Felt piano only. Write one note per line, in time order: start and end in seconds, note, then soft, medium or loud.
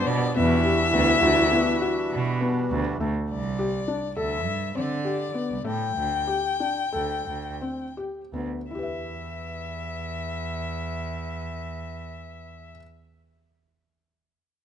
0.00 0.15 B3 medium
0.36 0.54 B3 medium
0.65 0.84 G4 medium
0.94 1.13 B3 medium
1.23 1.42 F#4 medium
1.52 1.71 B3 medium
1.81 2.20 F#4 medium
2.41 2.79 B3 medium
3.00 3.38 A3 medium
3.59 3.77 G4 medium
3.88 4.06 D4 medium
4.17 4.55 A4 medium
4.75 4.94 C4 medium
5.05 5.24 G4 medium
5.34 5.54 B3 medium
5.64 6.05 A3 medium
6.28 6.48 G4 medium
6.60 6.81 D4 medium
6.93 7.37 A4 medium
7.61 7.84 C4 medium
7.97 8.21 G4 soft
8.33 8.58 B3 soft
8.71 12.70 E4 soft
8.75 12.74 G4 soft
8.75 12.78 B4 soft
8.83 12.82 E5 soft